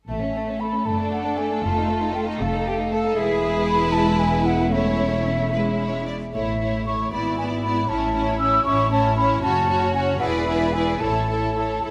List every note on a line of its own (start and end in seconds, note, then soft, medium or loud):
0.08 0.71 A1 soft
0.08 0.21 A3 soft
0.08 3.13 A3 soft
0.08 3.13 A4 soft
0.08 0.62 E5 soft
0.21 0.35 C#4 soft
0.35 0.48 A3 soft
0.48 0.61 C#4 soft
0.60 0.74 A3 soft
0.60 0.88 B5 soft
0.73 0.87 C#4 soft
0.86 1.48 F#1 soft
0.86 0.99 A3 soft
0.86 1.60 D4 soft
0.86 1.11 A5 soft
0.99 1.12 D4 soft
1.12 1.25 A3 soft
1.12 1.39 F#5 soft
1.26 1.38 D4 soft
1.37 1.51 A3 soft
1.37 1.65 G#5 soft
1.51 1.64 D4 soft
1.63 2.25 F1 soft
1.63 1.75 A3 soft
1.63 2.39 F4 soft
1.63 2.14 A5 soft
1.77 1.89 D#4 soft
1.88 2.02 A3 soft
2.02 2.15 D#4 soft
2.14 2.27 A3 soft
2.14 2.20 G5 medium
2.27 2.40 D#4 soft
2.40 3.01 F1 soft
2.40 2.53 A3 soft
2.40 2.66 A4 soft
2.40 3.18 F5 medium
2.52 2.65 D#4 soft
2.66 2.79 A3 soft
2.66 2.74 G4 medium
2.79 2.91 D#4 soft
2.92 3.04 A3 soft
2.92 3.16 A4 medium
3.05 3.17 D#4 soft
3.16 6.09 E1 medium
3.16 4.69 G#3 medium
3.16 4.69 E4 medium
3.16 3.94 G#4 medium
3.16 4.68 B4 medium
3.16 3.67 E5 medium
3.68 3.94 B5 medium
3.92 4.71 E4 soft
3.92 4.20 A5 medium
4.19 4.48 G#5 medium
4.46 4.74 F#5 medium
4.72 5.53 A3 soft
4.72 5.91 C#4 soft
4.72 5.52 E4 soft
4.72 5.52 C#5 soft
4.72 6.06 E5 soft
5.52 6.13 G#3 soft
5.52 6.12 E4 soft
5.52 5.60 B4 soft
5.79 6.06 C#5 soft
6.06 6.14 D5 soft
6.33 7.03 A1 soft
6.33 6.59 A3 soft
6.33 6.59 E4 soft
6.33 6.59 C#5 soft
6.33 6.82 E5 soft
6.60 6.86 A3 soft
6.60 6.85 E4 soft
6.60 6.84 C#5 soft
6.86 7.12 A3 soft
6.86 7.11 E4 soft
6.86 7.11 C#5 soft
6.86 7.12 C#6 medium
7.12 7.80 G#1 soft
7.12 7.38 B3 soft
7.12 7.85 E4 soft
7.12 7.37 E4 soft
7.12 7.37 D5 soft
7.12 7.38 B5 soft
7.38 7.64 B3 soft
7.38 7.63 E4 soft
7.38 7.63 D5 soft
7.38 7.44 G#5 medium
7.63 7.90 B3 soft
7.63 7.88 E4 soft
7.63 7.89 D5 soft
7.63 7.90 B5 soft
7.89 8.57 A1 soft
7.89 8.15 C#4 soft
7.89 9.40 E4 soft
7.89 8.14 E4 soft
7.89 8.13 C#5 soft
7.89 8.39 A5 medium
8.15 8.40 C#4 soft
8.15 8.40 E4 soft
8.15 8.39 C#5 soft
8.39 8.66 C#4 soft
8.39 8.65 E4 soft
8.39 8.64 C#5 soft
8.39 8.64 E6 medium
8.65 9.34 A1 medium
8.65 8.91 C#4 soft
8.65 8.90 E4 soft
8.65 8.91 C#5 soft
8.65 8.91 C#6 medium
8.91 9.16 C#4 soft
8.91 9.16 E4 soft
8.91 9.17 C#5 soft
8.91 9.16 A5 medium
9.17 9.43 C#4 soft
9.17 9.43 E4 soft
9.17 9.42 C#5 soft
9.17 9.42 B5 medium
9.43 10.12 F#1 medium
9.43 9.68 C#4 medium
9.43 10.20 F#4 medium
9.43 9.67 F#4 medium
9.43 9.69 C#5 medium
9.43 9.94 A5 medium
9.68 9.94 C#4 soft
9.68 9.94 F#4 soft
9.68 9.95 C#5 soft
9.95 10.21 C#4 soft
9.95 10.21 F#4 soft
9.95 10.22 C#5 soft
9.95 10.01 G#5 medium
10.20 10.92 E1 medium
10.20 10.47 E4 soft
10.20 10.47 G#4 soft
10.20 11.00 B4 medium
10.20 10.48 D5 soft
10.20 10.26 F#5 medium
10.46 10.74 E4 soft
10.46 10.74 G#4 soft
10.46 10.75 D5 soft
10.46 10.74 E5 medium
10.73 11.01 E4 soft
10.73 11.01 G#4 soft
10.73 11.02 D5 soft
10.73 11.02 G#5 soft
11.00 11.75 A1 soft
11.00 11.29 E4 soft
11.00 11.79 A4 soft
11.00 11.29 A4 soft
11.00 11.29 C#5 soft
11.00 11.83 A5 soft
11.30 11.56 E4 soft
11.30 11.56 A4 soft
11.30 11.57 C#5 soft
11.57 11.83 E4 soft
11.57 11.84 A4 soft
11.57 11.85 C#5 soft
11.84 11.90 A1 soft
11.84 11.90 E4 soft
11.84 11.90 A4 soft
11.84 11.90 C#5 soft